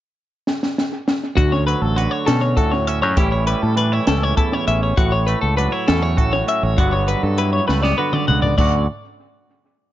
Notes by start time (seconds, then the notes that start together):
0.47 snare
0.63 snare
0.78 snare
1.08 snare
1.35 D2 F#4, kick, closed hi-hat
1.52 C#5
1.67 F#3 B4, closed hi-hat
1.82 A1 A4
1.96 D3 F#4 B4, closed hi-hat
2.11 C#5
2.26 B2 C#4 A4, snare, closed hi-hat
2.41 C#5
2.57 D2 A2 F#4 A4, kick, closed hi-hat
2.72 C#5
2.87 C#4 E5, closed hi-hat
3.02 F#2 C#5
3.17 A1 A2 E3 G3 C#4 E4 G4, kick, closed hi-hat
3.32 C#5
3.47 G3 B4, closed hi-hat
3.62 A2 A4
3.76 E3 D4 B4, closed hi-hat
3.92 E4 C#5
4.07 C#2 C#4 A4, snare, closed hi-hat
4.23 C#5
4.37 E2 E4 A4, kick, closed hi-hat
4.53 C#5
4.68 A1 C#4 E5, closed hi-hat
4.83 C#5
4.97 A1 A2 F#4, kick, closed hi-hat
5.12 C#5
5.27 A3 B4, closed hi-hat
5.42 C#2 A4
5.57 F#3 D4 B4, closed hi-hat
5.72 E4 C#5
5.88 E2 C#4 A4, snare, closed hi-hat
6.02 C#5
6.17 A1 A2 F#4 A4, kick, closed hi-hat
6.33 C#5
6.47 C#4 E5, closed hi-hat
6.63 A1 C#5
6.77 G1 G2 D3 F#3 B3 F#4, kick, closed hi-hat
6.93 C#5
7.07 F#3 B4, closed hi-hat
7.23 G2 A4
7.38 E4 B4, closed hi-hat
7.53 C#5
7.68 C#2 A3 B4, snare
7.83 B3 D5, snare
7.98 D3 F#4 B4
8.13 D5, mid tom
8.28 C#2 B3 F#5, mid tom
8.42 D5, floor tom
8.58 D2 D3 F#3 C#4 F#4 D5, kick, crash